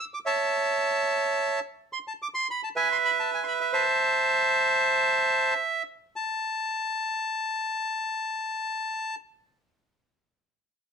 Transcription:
0.14 D6
0.26 C#5 E5 A5
1.93 C6
2.08 A5
2.22 D6
2.34 C6
2.51 B5
2.64 A5
2.76 B4 E5 G#5
2.92 C6
3.05 B5
3.19 A5
3.34 G#5
3.43 C6
3.48 B5
3.61 E5
3.73 C5 E5 A5
6.16 A5

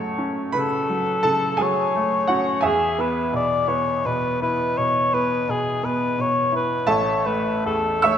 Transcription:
Already playing: F#2 C#3 F#3 A3 F#4 C#5 F#5 A5 C#6
0.18 C#4
0.52 C#3 A4 B4 B5
0.89 F#3
1.23 C#3 A4 A5
1.57 F#3 G#4 G#5
1.62 C#5
1.96 A3
2.27 C#4 F#4 F#5
2.61 E2 G#4 E5 G#5
2.66 G#4
2.98 B3 B4
3.32 B2 D5
3.68 B3 C#5
4.05 B2 B4
4.42 E4 B4
4.78 B2 C#5
5.14 B3 B4
5.48 B2 G#4
5.83 B3 B4
6.18 B2 C#5
6.52 E4 B4
6.87 A1 A4 C#5 E5 A5
7.26 A3 B4
7.66 E2 A4
8.02 A3 C#5 E5 C#6 E6

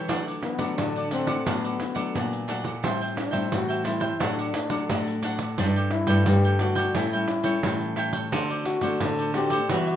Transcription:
0.08 D3 F#3 A3 D4 A4 D5 F#5, pandeiro
0.27 A4 D5 F#5, pandeiro
0.42 B3, muted cavaquinho stroke, pandeiro
0.58 D3 F#3 A3 D4 A4 D5 F#5, pandeiro
0.77 A2 D3 D4, pandeiro
0.96 A4 D5 F#5, pandeiro
1.11 F#3 A3 C4 D4 A4 D5 F#5, pandeiro
1.27 A4 D5 F#5, pandeiro
1.46 A2 D3 F#3 A3 B3 D4 A4 D5 F#5, pandeiro
1.64 A4 D5 F#5, pandeiro
1.79 muted cavaquinho stroke, pandeiro
1.95 F#3 A3 D4 A4 D5 F#5, pandeiro
2.14 A#2 D4 A4 D5 F#5, pandeiro
2.33 pandeiro
2.48 F#3 A3 D4 A4 D5 F#5, pandeiro
2.64 A4 D5 F#5, pandeiro
2.83 A2 G3 C4 E4 A4 C5 E5 G5, pandeiro
3.01 C5 E5 G5, pandeiro
3.16 D4, muted cavaquinho stroke, pandeiro
3.31 A2 G3 C4 E4 C5 E5 G5, pandeiro
3.52 A2 E3 F#4, pandeiro
3.69 C5 E5 G5, pandeiro
3.84 G3 C4 E4 A4 C5 E5 G5, pandeiro
4.00 C5 E5 G5, pandeiro
4.20 A2 F#3 A3 D4 A4 D5 F#5, pandeiro
4.38 A4 D5 F#5, pandeiro
4.54 muted cavaquinho stroke, pandeiro
4.70 F#3 A3 D4 A4 D5 F#5, pandeiro
4.89 A2 D4 A4 D5 F#5, pandeiro
5.07 pandeiro
5.23 F#3 A3 D4 A4 D5 F#5, pandeiro
5.39 A4 D5 F#5, pandeiro
5.58 G2 G3 A3 D4 A4 D5 G5, pandeiro
5.76 A4 D5 G5, pandeiro
5.91 E4, muted cavaquinho stroke, pandeiro
6.07 G2 G3 A3 D4 A4 D5 G5, pandeiro
6.26 G2 D3 G4, pandeiro
6.44 A4 D5 G5, pandeiro
6.59 G3 A3 D4 F#4 A4 D5 G5, pandeiro
6.75 A4 D5 G5, pandeiro
6.95 A2 G3 C#4 E4 A4 C#5 G5, pandeiro
7.13 G3 C#4 E4 A4 C#5 G5, pandeiro
7.28 muted cavaquinho stroke, pandeiro
7.43 G3 C#4 E4 A4 C#5 G5, pandeiro
7.63 A2 E3 G3 C#4 E4 A4 C#5 G5, pandeiro
7.81 pandeiro
7.96 E4 A4 C#5 G5, pandeiro
8.13 A4 C#5 G5, pandeiro
8.32 D3 A3 C4 F#4 A4 C5 D5, pandeiro
8.50 A4 C5 D5, pandeiro
8.65 F#4, muted cavaquinho stroke, pandeiro
8.81 D3 A3 C4 F#4 A4 C5 D5, pandeiro
9.00 A2 D3 A4, pandeiro
9.18 A4 C5 D5, pandeiro
9.34 A3 C4 F#4 G4 A4 C5 D5, pandeiro
9.50 A4 C5 D5, pandeiro
9.69 E3 G3 B3 F#4 G4 B4 E5, pandeiro
9.87 G4 B4 E5, pandeiro

